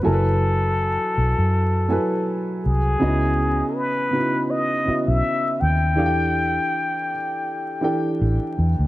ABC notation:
X:1
M:4/4
L:1/16
Q:"Swing 16ths" 1/4=81
K:F#mix
V:1 name="Muted trumpet"
=A12- A z G2- | G4 B4 d3 e3 =g2- | =g12 z4 |]
V:2 name="Upright piano"
[F,E=A^ABg]6 z4 [F,E=ABg]4 z2 | [C,B,DEFd]4 z2 [C,B,DEFB]3 z [C,B,EFe]4 z2 | [E,=D=G=A^e=g]6 z4 [=E,DGAg]4 z2 |]
V:3 name="Fingered electric bass" clef=bass
F,,,4- F,,, z B,,, F,,4 z3 ^B,,,2 | C,,4 z6 z B,,, z2 D,,2 | E,,4 z8 =A,,, z E,, =D,, |]